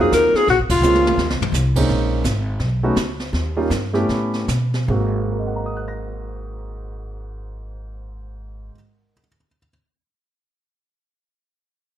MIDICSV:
0, 0, Header, 1, 6, 480
1, 0, Start_track
1, 0, Tempo, 353982
1, 635, Time_signature, 4, 2, 24, 8
1, 3516, Tempo, 372671
1, 5436, Tempo, 414079
1, 14587, End_track
2, 0, Start_track
2, 0, Title_t, "Alto saxophone"
2, 0, Program_c, 0, 65
2, 11, Note_on_c, 0, 68, 97
2, 162, Note_off_c, 0, 68, 0
2, 185, Note_on_c, 0, 70, 109
2, 490, Note_on_c, 0, 68, 108
2, 511, Note_off_c, 0, 70, 0
2, 653, Note_off_c, 0, 68, 0
2, 677, Note_on_c, 0, 66, 89
2, 802, Note_off_c, 0, 66, 0
2, 963, Note_on_c, 0, 65, 100
2, 1852, Note_off_c, 0, 65, 0
2, 14587, End_track
3, 0, Start_track
3, 0, Title_t, "Grand piano"
3, 0, Program_c, 1, 0
3, 0, Note_on_c, 1, 54, 75
3, 0, Note_on_c, 1, 58, 66
3, 0, Note_on_c, 1, 60, 64
3, 0, Note_on_c, 1, 63, 68
3, 0, Note_on_c, 1, 65, 82
3, 602, Note_off_c, 1, 54, 0
3, 602, Note_off_c, 1, 58, 0
3, 604, Note_off_c, 1, 60, 0
3, 604, Note_off_c, 1, 63, 0
3, 604, Note_off_c, 1, 65, 0
3, 1124, Note_on_c, 1, 56, 65
3, 1128, Note_on_c, 1, 60, 59
3, 1132, Note_on_c, 1, 58, 59
3, 1134, Note_on_c, 1, 61, 54
3, 1134, Note_on_c, 1, 65, 71
3, 1598, Note_off_c, 1, 56, 0
3, 1600, Note_off_c, 1, 60, 0
3, 1602, Note_off_c, 1, 58, 0
3, 1603, Note_off_c, 1, 61, 0
3, 1603, Note_off_c, 1, 65, 0
3, 2389, Note_on_c, 1, 58, 64
3, 2390, Note_on_c, 1, 56, 70
3, 2394, Note_on_c, 1, 61, 67
3, 2396, Note_on_c, 1, 60, 63
3, 2398, Note_on_c, 1, 63, 74
3, 3004, Note_off_c, 1, 58, 0
3, 3005, Note_off_c, 1, 56, 0
3, 3007, Note_off_c, 1, 61, 0
3, 3008, Note_off_c, 1, 60, 0
3, 3009, Note_off_c, 1, 63, 0
3, 3824, Note_on_c, 1, 57, 76
3, 3827, Note_on_c, 1, 63, 68
3, 3828, Note_on_c, 1, 61, 72
3, 3829, Note_on_c, 1, 59, 71
3, 3837, Note_on_c, 1, 66, 85
3, 3973, Note_off_c, 1, 57, 0
3, 3975, Note_off_c, 1, 61, 0
3, 3975, Note_off_c, 1, 63, 0
3, 3976, Note_off_c, 1, 59, 0
3, 3980, Note_off_c, 1, 66, 0
3, 4770, Note_on_c, 1, 58, 64
3, 4770, Note_on_c, 1, 61, 62
3, 4772, Note_on_c, 1, 55, 72
3, 4773, Note_on_c, 1, 63, 64
3, 4774, Note_on_c, 1, 65, 75
3, 4929, Note_off_c, 1, 55, 0
3, 4929, Note_off_c, 1, 58, 0
3, 4929, Note_off_c, 1, 61, 0
3, 4930, Note_off_c, 1, 63, 0
3, 4931, Note_off_c, 1, 65, 0
3, 5244, Note_on_c, 1, 59, 67
3, 5247, Note_on_c, 1, 57, 73
3, 5250, Note_on_c, 1, 61, 68
3, 5251, Note_on_c, 1, 67, 82
3, 5258, Note_on_c, 1, 64, 69
3, 5859, Note_off_c, 1, 59, 0
3, 5860, Note_off_c, 1, 57, 0
3, 5862, Note_off_c, 1, 61, 0
3, 5862, Note_off_c, 1, 67, 0
3, 5865, Note_off_c, 1, 64, 0
3, 6358, Note_on_c, 1, 44, 64
3, 6366, Note_on_c, 1, 56, 55
3, 6378, Note_on_c, 1, 58, 55
3, 6383, Note_on_c, 1, 60, 56
3, 6393, Note_on_c, 1, 66, 71
3, 6861, Note_on_c, 1, 70, 42
3, 6951, Note_on_c, 1, 75, 39
3, 7040, Note_on_c, 1, 78, 39
3, 7146, Note_on_c, 1, 82, 39
3, 7264, Note_on_c, 1, 87, 39
3, 7387, Note_on_c, 1, 90, 35
3, 7519, Note_on_c, 1, 94, 34
3, 10812, Note_off_c, 1, 44, 0
3, 10820, Note_off_c, 1, 56, 0
3, 10832, Note_off_c, 1, 58, 0
3, 10838, Note_off_c, 1, 60, 0
3, 10847, Note_off_c, 1, 66, 0
3, 11268, Note_off_c, 1, 70, 0
3, 11359, Note_off_c, 1, 75, 0
3, 11447, Note_off_c, 1, 78, 0
3, 11553, Note_off_c, 1, 82, 0
3, 11672, Note_off_c, 1, 87, 0
3, 11795, Note_off_c, 1, 90, 0
3, 11927, Note_off_c, 1, 94, 0
3, 14587, End_track
4, 0, Start_track
4, 0, Title_t, "Upright bass"
4, 0, Program_c, 2, 32
4, 0, Note_on_c, 2, 41, 90
4, 148, Note_off_c, 2, 41, 0
4, 165, Note_on_c, 2, 39, 85
4, 438, Note_off_c, 2, 39, 0
4, 646, Note_on_c, 2, 34, 92
4, 801, Note_on_c, 2, 32, 57
4, 822, Note_off_c, 2, 34, 0
4, 938, Note_off_c, 2, 32, 0
4, 946, Note_on_c, 2, 29, 69
4, 1098, Note_off_c, 2, 29, 0
4, 1104, Note_on_c, 2, 37, 91
4, 1573, Note_off_c, 2, 37, 0
4, 1589, Note_on_c, 2, 39, 81
4, 1746, Note_off_c, 2, 39, 0
4, 1746, Note_on_c, 2, 37, 58
4, 1899, Note_off_c, 2, 37, 0
4, 1907, Note_on_c, 2, 34, 64
4, 2055, Note_off_c, 2, 34, 0
4, 2063, Note_on_c, 2, 36, 89
4, 2532, Note_off_c, 2, 36, 0
4, 2562, Note_on_c, 2, 34, 88
4, 3023, Note_off_c, 2, 34, 0
4, 3038, Note_on_c, 2, 32, 92
4, 3505, Note_off_c, 2, 32, 0
4, 3520, Note_on_c, 2, 35, 83
4, 3970, Note_off_c, 2, 35, 0
4, 3992, Note_on_c, 2, 37, 77
4, 4447, Note_off_c, 2, 37, 0
4, 4464, Note_on_c, 2, 39, 90
4, 4930, Note_off_c, 2, 39, 0
4, 4944, Note_on_c, 2, 43, 88
4, 5423, Note_off_c, 2, 43, 0
4, 5443, Note_on_c, 2, 45, 82
4, 5885, Note_off_c, 2, 45, 0
4, 5896, Note_on_c, 2, 47, 76
4, 6355, Note_off_c, 2, 47, 0
4, 6361, Note_on_c, 2, 32, 89
4, 10769, Note_off_c, 2, 32, 0
4, 14587, End_track
5, 0, Start_track
5, 0, Title_t, "Muted upright bass strokes"
5, 455, Note_on_c, 9, 29, 38
5, 590, Note_off_c, 9, 29, 0
5, 14587, End_track
6, 0, Start_track
6, 0, Title_t, "Drums"
6, 168, Note_on_c, 9, 36, 24
6, 168, Note_on_c, 9, 44, 60
6, 171, Note_on_c, 9, 38, 66
6, 303, Note_off_c, 9, 36, 0
6, 304, Note_off_c, 9, 44, 0
6, 306, Note_off_c, 9, 38, 0
6, 475, Note_on_c, 9, 38, 40
6, 611, Note_off_c, 9, 38, 0
6, 648, Note_on_c, 9, 36, 21
6, 649, Note_on_c, 9, 25, 46
6, 649, Note_on_c, 9, 38, 44
6, 784, Note_off_c, 9, 36, 0
6, 784, Note_off_c, 9, 38, 0
6, 945, Note_on_c, 9, 36, 79
6, 946, Note_on_c, 9, 49, 80
6, 1081, Note_off_c, 9, 36, 0
6, 1081, Note_off_c, 9, 49, 0
6, 1124, Note_on_c, 9, 44, 53
6, 1260, Note_off_c, 9, 44, 0
6, 1290, Note_on_c, 9, 47, 56
6, 1425, Note_off_c, 9, 47, 0
6, 1451, Note_on_c, 9, 47, 73
6, 1587, Note_off_c, 9, 47, 0
6, 1609, Note_on_c, 9, 38, 68
6, 1745, Note_off_c, 9, 38, 0
6, 1766, Note_on_c, 9, 38, 73
6, 1901, Note_off_c, 9, 38, 0
6, 1927, Note_on_c, 9, 43, 90
6, 2062, Note_off_c, 9, 43, 0
6, 2084, Note_on_c, 9, 44, 66
6, 2087, Note_on_c, 9, 38, 58
6, 2220, Note_off_c, 9, 44, 0
6, 2222, Note_off_c, 9, 38, 0
6, 2384, Note_on_c, 9, 36, 73
6, 2387, Note_on_c, 9, 49, 81
6, 2520, Note_off_c, 9, 36, 0
6, 2523, Note_off_c, 9, 49, 0
6, 2564, Note_on_c, 9, 36, 18
6, 2571, Note_off_c, 9, 25, 0
6, 2571, Note_on_c, 9, 25, 45
6, 2571, Note_on_c, 9, 38, 39
6, 2699, Note_off_c, 9, 36, 0
6, 2706, Note_off_c, 9, 38, 0
6, 3041, Note_on_c, 9, 36, 19
6, 3045, Note_on_c, 9, 44, 58
6, 3048, Note_on_c, 9, 38, 63
6, 3177, Note_off_c, 9, 36, 0
6, 3181, Note_off_c, 9, 44, 0
6, 3183, Note_off_c, 9, 38, 0
6, 3521, Note_off_c, 9, 25, 0
6, 3521, Note_on_c, 9, 25, 41
6, 3521, Note_on_c, 9, 38, 42
6, 3523, Note_on_c, 9, 36, 24
6, 3650, Note_off_c, 9, 38, 0
6, 3652, Note_off_c, 9, 36, 0
6, 3992, Note_on_c, 9, 36, 23
6, 3994, Note_on_c, 9, 44, 53
6, 3996, Note_on_c, 9, 38, 65
6, 4120, Note_off_c, 9, 36, 0
6, 4122, Note_off_c, 9, 44, 0
6, 4125, Note_off_c, 9, 38, 0
6, 4295, Note_on_c, 9, 38, 41
6, 4423, Note_off_c, 9, 38, 0
6, 4468, Note_on_c, 9, 36, 22
6, 4477, Note_off_c, 9, 25, 0
6, 4477, Note_on_c, 9, 25, 45
6, 4477, Note_on_c, 9, 38, 43
6, 4596, Note_off_c, 9, 36, 0
6, 4606, Note_off_c, 9, 38, 0
6, 4948, Note_on_c, 9, 36, 26
6, 4950, Note_on_c, 9, 44, 55
6, 4953, Note_on_c, 9, 38, 61
6, 5077, Note_off_c, 9, 36, 0
6, 5079, Note_off_c, 9, 44, 0
6, 5082, Note_off_c, 9, 38, 0
6, 5258, Note_on_c, 9, 38, 37
6, 5386, Note_off_c, 9, 38, 0
6, 5441, Note_on_c, 9, 36, 22
6, 5444, Note_off_c, 9, 25, 0
6, 5444, Note_on_c, 9, 25, 44
6, 5444, Note_on_c, 9, 38, 39
6, 5557, Note_off_c, 9, 36, 0
6, 5559, Note_off_c, 9, 38, 0
6, 5728, Note_on_c, 9, 38, 39
6, 5844, Note_off_c, 9, 38, 0
6, 5897, Note_on_c, 9, 36, 19
6, 5898, Note_on_c, 9, 44, 56
6, 5900, Note_on_c, 9, 38, 60
6, 6013, Note_off_c, 9, 36, 0
6, 6014, Note_off_c, 9, 44, 0
6, 6016, Note_off_c, 9, 38, 0
6, 6194, Note_on_c, 9, 38, 40
6, 6310, Note_off_c, 9, 38, 0
6, 6746, Note_off_c, 9, 25, 0
6, 14587, End_track
0, 0, End_of_file